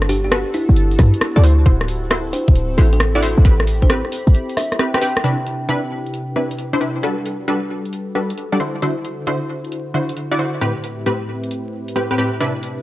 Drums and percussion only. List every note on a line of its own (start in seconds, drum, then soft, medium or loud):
0.02 cross-stick medium
0.02 shaker soft
0.09 open hi-hat loud
0.09 shaker medium
0.24 shaker soft
0.31 cross-stick loud
0.31 closed hi-hat medium
0.31 shaker medium
0.46 shaker soft
0.54 open hi-hat loud
0.54 shaker medium
0.69 shaker soft
0.76 closed hi-hat medium
0.76 shaker soft
0.91 open hi-hat medium
0.91 shaker soft
0.99 kick loud
0.99 cross-stick medium
0.99 open hi-hat loud
0.99 shaker medium
1.14 closed hi-hat medium
1.14 shaker soft
1.21 cross-stick loud
1.21 closed hi-hat medium
1.21 shaker medium
1.37 shaker soft
1.43 open hi-hat loud
1.43 shaker medium
1.59 shaker soft
1.66 kick loud
1.66 closed hi-hat medium
1.66 shaker medium
1.80 cross-stick medium
1.80 shaker soft
1.88 open hi-hat loud
1.88 shaker medium
2.03 shaker soft
2.11 cross-stick loud
2.11 closed hi-hat medium
2.11 shaker medium
2.26 shaker soft
2.33 open hi-hat loud
2.33 shaker medium
2.48 kick loud
2.48 shaker soft
2.55 closed hi-hat medium
2.55 shaker medium
2.70 shaker soft
2.78 open hi-hat loud
2.78 shaker medium
2.92 closed hi-hat medium
2.92 shaker soft
3.00 cross-stick loud
3.00 closed hi-hat medium
3.00 shaker soft
3.15 shaker soft
3.23 open hi-hat loud
3.23 shaker medium
3.37 shaker soft
3.45 kick loud
3.45 closed hi-hat medium
3.45 shaker soft
3.59 cross-stick medium
3.59 shaker soft
3.67 open hi-hat loud
3.67 shaker medium
3.82 kick medium
3.82 shaker soft
3.89 cross-stick loud
3.89 closed hi-hat medium
3.89 shaker medium
4.05 cross-stick soft
4.05 shaker soft
4.12 open hi-hat loud
4.12 shaker medium
4.27 closed hi-hat soft
4.27 shaker soft
4.34 closed hi-hat medium
4.34 shaker medium
4.49 open hi-hat medium
4.49 shaker soft
4.57 cross-stick medium
4.57 open hi-hat loud
4.57 shaker medium
4.72 cross-stick medium
4.72 closed hi-hat medium
4.72 shaker soft
4.79 cross-stick medium
4.79 closed hi-hat medium
4.79 shaker medium
4.94 cross-stick medium
4.94 shaker soft
5.02 open hi-hat loud
5.02 shaker medium
5.16 cross-stick medium
5.16 shaker soft
5.24 closed hi-hat medium
5.47 closed hi-hat medium
5.69 closed hi-hat medium
6.06 closed hi-hat soft
6.14 closed hi-hat medium
6.51 closed hi-hat medium
6.58 closed hi-hat medium
6.81 closed hi-hat soft
7.03 closed hi-hat medium
7.26 closed hi-hat medium
7.48 closed hi-hat medium
7.85 closed hi-hat soft
7.93 closed hi-hat medium
8.30 closed hi-hat medium
8.38 closed hi-hat medium
8.60 closed hi-hat soft
8.82 closed hi-hat medium
9.05 closed hi-hat medium
9.27 closed hi-hat medium
9.64 closed hi-hat soft
9.72 closed hi-hat medium
10.09 closed hi-hat medium
10.17 closed hi-hat medium
10.39 closed hi-hat soft
10.61 closed hi-hat medium
10.84 closed hi-hat medium
11.06 closed hi-hat medium
11.43 closed hi-hat soft
11.51 closed hi-hat medium
11.88 closed hi-hat medium
11.96 closed hi-hat medium
12.18 closed hi-hat soft
12.40 closed hi-hat medium
12.40 shaker medium
12.55 shaker soft
12.63 closed hi-hat medium
12.63 shaker medium
12.78 shaker soft